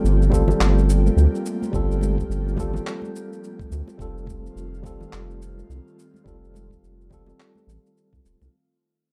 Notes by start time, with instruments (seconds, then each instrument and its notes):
Already playing: analog synth pad F3 A3 A#3 G4, tine electric piano G3 C4 F4 A4
0.04 analog synth bass G1, shaker
0.22 shaker
0.30 tine electric piano G3 C4 F4 A4, kick, muted conga, high conga, low conga, shaker
0.48 muted conga, low conga, shaker
0.59 analog synth bass G1, clap, high conga, shaker
0.78 shaker
0.89 shaker
1.06 high conga, shaker
1.17 analog synth bass D2, shaker
1.35 shaker
1.46 shaker
1.62 high conga, shaker
1.72 analog synth bass G1, tine electric piano G3 C4 F4 A4, kick, shaker
1.91 shaker
2.01 muted conga, high conga, shaker
2.18 kick, shaker
2.29 analog synth bass G1, shaker
2.48 shaker
2.56 tine electric piano G3 C4 F4 A4, kick, muted conga, high conga, low conga, shaker
2.73 muted conga, low conga, shaker
2.87 clap, shaker
3.02 high conga, shaker
3.16 shaker
3.33 shaker
3.44 shaker
3.60 kick, shaker
3.70 analog synth bass D2, high conga, shaker
3.88 muted conga, shaker
3.98 analog synth bass F1, analog synth pad D#3 A3 C4 F4, tine electric piano G3 C4 F4, kick, shaker
4.02 tine electric piano A4
4.18 shaker
4.27 kick, high conga, shaker
4.46 shaker
4.56 analog synth bass F1, shaker
4.74 shaker
4.82 tine electric piano G3 C4 F4, kick, muted conga, high conga, low conga, shaker
4.86 tine electric piano A4
5.00 muted conga, low conga, shaker
5.11 analog synth bass F1, clap, high conga, shaker
5.30 shaker
5.42 shaker
5.58 high conga, shaker
5.69 analog synth bass C2, shaker
5.88 shaker
5.99 shaker
6.14 high conga, shaker
6.24 analog synth bass F1, tine electric piano G3 C4 F4 A4, kick, shaker
6.44 shaker
6.54 muted conga, high conga, shaker
6.71 kick, shaker
6.83 analog synth bass F1, shaker
7.01 shaker
7.10 tine electric piano G3 C4 F4 A4, kick, muted conga, high conga, low conga, shaker
7.26 muted conga, low conga, shaker
7.40 clap, shaker
7.55 high conga, shaker
7.67 analog synth bass A1, shaker
7.86 shaker
7.97 shaker
8.13 analog synth bass C2, kick, shaker
8.24 analog synth bass D#1, high conga, shaker
8.41 analog synth bass C2, muted conga, shaker